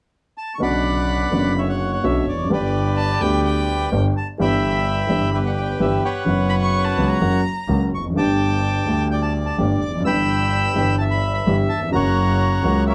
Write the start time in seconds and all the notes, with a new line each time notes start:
0.38 A5
0.55 D3 C#6
0.60 B1 B2 C#3 B3 F#4 D5 F#5 B5
1.30 F#1 F#2 D3 B3 C#4
1.34 F#4
1.58 C#5 E5
1.69 F#5
1.93 F#5
2.04 B1 B2 D3 B3 C#4 F#4 E5
2.27 F1 D5
2.32 E2
2.39 F2
2.44 F#2
2.49 G1 G2 D3 G3 B3 G4
2.53 B4 D5
2.97 A5
3.19 D2 D3 G3 B3 G4 G5
3.45 G5
3.92 G1 G2 D3 G3 B3 G4
4.17 A5
4.38 G1 G2 E3 G3 B3 G4 E5 G5 B5
5.07 G1 G2 E3 G3 B3
5.11 G4
5.34 G4 B4 E5
5.46 F#5
5.57 G5
5.79 G1 G2 E3 G3 B3 G4 E5
6.05 B4 C#5 F#5
6.25 F#1 F#2 C#3 F#3 B3
6.29 F#4
6.49 B5
6.61 C#6
6.84 A5
6.97 C#2 C#3 F#3 B3 F#4
7.08 A#5
7.21 F#1 F#2 C#3 F#3 A#3 F#4
7.68 C#2 C#3 F#3 A#3 F#4
7.92 F1 C#6
7.98 E2
8.04 F2
8.10 F#2 D3
8.15 G1 G2 G3 A3 G4 G5 A5 D6
8.85 D2 D3 G3 A3 G4
9.11 D5 G5
9.22 A5
9.46 A5
9.58 G1 G2 D3 G3 A3 G4
9.81 F1 D6
9.89 E2
9.95 F2
10.00 F#2 E3
10.05 G1 G2 G3 B3 G4 G5 B5 E6
10.74 G1 G2 E3 G3 B3
10.78 G4
10.98 E5 A5
11.11 B5
11.34 B5
11.46 G1 G2 E3 G3 B3 G4
11.69 A5
11.76 D#2
11.82 E2
11.87 F2 C#3
11.92 F#1 F#2 F#3 A#3 F#4 C#5 F#5 A#5
12.62 C#2 C#3 F#3 A#3 F#4
12.87 A#4 C#5 E5